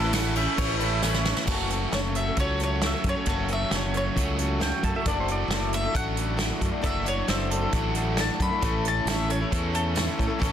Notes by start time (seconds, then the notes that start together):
Already playing: A1 A2 E3 A3 C#4 E4 A4 B4
0.04 C#4 E4 B4
0.13 E3 A3 C#4 E4 B4 F#5, snare, ride, tambourine
0.35 A3 C#4 E4 B4 E5, ride
0.58 A1 C#5, kick, ride
0.79 A3 C#4 E4 B4 E5, ride
0.84 A3
1.02 A2 E3 A3 C#4 E4 B4 C#5, snare, tambourine
1.13 C#4 E4 B4, snare
1.24 A3 C#4 E4 B4, snare
1.29 A3
1.35 C#4 E4 B4, snare
1.46 F#1 F#2 C#3 E3 F#3 A3 C#4 A4, kick, crash
1.50 A3 C#4 F#4
1.69 E3 A3 C#4 A4, closed hi-hat
1.91 F#1 F#2 C#3 E3 A3 C#4 A4 C#5, snare, closed hi-hat
2.15 E3 A3 C#4 A4 E5, closed hi-hat
2.26 E3 A3 C#4 A4
2.36 C#2 F#2 C#3 F#3 A3 C#4 F#4 C#5, kick, closed hi-hat
2.57 E3 A3 C#4 A4, closed hi-hat
2.63 C#5
2.81 F#2 C#3 E3 A3 C#4 A4, snare, closed hi-hat
2.86 E5
2.93 E3 A3 C#4 A4
3.04 F#2 E3 A3 C#4 A4, kick, closed hi-hat
3.09 C#5
3.15 E3 A3 C#4 A4
3.26 F#1 F#2 C#3 E3 F#3 A3 C#4 F#4 A4 C#5, kick, closed hi-hat
3.48 E3 A3 C#4 A4, closed hi-hat
3.53 E5
3.71 F#1 F#2 C#3 E3 A3 C#4 A4, snare, closed hi-hat
3.75 C#5
3.93 E3 A3 C#4 A4, closed hi-hat
3.97 C#5
4.03 E3 A3 C#4 A4
4.16 C#2 F#2 C#3 F#3 A3 C#4 F#4, kick, closed hi-hat
4.37 E3 A3 C#4 A4, closed hi-hat
4.60 F#2 C#3 E3 A3 C#4 A4 G5, snare, closed hi-hat
4.72 E3 A3 C#4 A4
4.83 F#2 E3 A3 C#4 A4 A5, kick, closed hi-hat
4.95 E3 A3 C#4 A4 E5
5.05 F#1 F#2 E3 F#3 A3 D4 E4 F#4 A4 D5, kick, closed hi-hat
5.20 C5
5.28 A3 D4 E4 A4 D5, closed hi-hat
5.48 F#1 F#2 E3 A3, snare, closed hi-hat
5.52 D4 E4 A4 D5
5.73 A3 D4 E4 A4 E5, closed hi-hat
5.83 A3 D4 E4 A4
5.93 A1 F#3 A3 D4 F#5, kick, closed hi-hat
5.97 F#4
6.16 A3 D4 E4 A4, closed hi-hat
6.37 F#2 E3 A3 D4 E4 A4, snare, closed hi-hat
6.48 A3 D4 E4 A4
6.59 F#2 A3 D4 E4 A4, kick, closed hi-hat
6.69 A3 D4 E4 A4
6.81 F#1 F#2 E3 F#3 A3 D4 E4 A4 E5, kick, closed hi-hat
6.87 F#4
7.04 A3 D4 E4 A4, closed hi-hat
7.08 C#5
7.27 F#1 F#2 E3 A3 C4 D4 E4 A4, snare, closed hi-hat
7.49 A3 D4 E4 A4, closed hi-hat
7.61 A3 D4 E4 A4
7.71 A1 F#3 A3 D4 F#4, kick, closed hi-hat
7.94 A3 D4 E4 A4, closed hi-hat
8.17 F#2 E3 A3 D4 E4 A4 A5, snare, closed hi-hat
8.29 A3 D4 E4 A4
8.34 B3 C4
8.39 F#2 A3 D4 E4 A4 B5, kick, closed hi-hat
8.45 F4 G4
8.50 A3 D4 E4 A4
8.55 B4 C5
8.60 A1 A2 E3 A3 C#4 E4 A4 C#5 D5, kick, closed hi-hat
8.64 C#4 A4
8.85 A3 C#4 E4 A4 A5, closed hi-hat
9.05 A1 A2 E3 A3 C#4 E4 A4 E5, snare, closed hi-hat, tambourine
9.28 A3 C#4 E4 A4 C#5, closed hi-hat
9.40 A3 C#4 E4 A4
9.51 E2 A2 E3 A3 C#4 A4, kick, closed hi-hat
9.73 A3 C#4 E4 A4, closed hi-hat
9.95 A2 E3 A3 C#4 E4 A4, snare, closed hi-hat, tambourine
10.07 A3 C#4 E4 A4
10.18 A2 A3 C#4 E4 A4, kick, closed hi-hat
10.27 A3 C#4 E4 A4
10.39 A1 A2 E3 A3 C#4 E4 A4, kick, closed hi-hat
10.44 A4